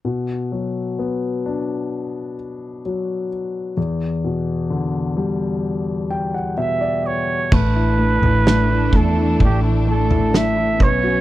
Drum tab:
CC |----------------|----------------|x---------------|
SD |----------------|----------------|----o-------o---|
FT |----------------|----------------|o--o--o-o--o----|
BD |----------------|----------------|o-----o-o-----o-|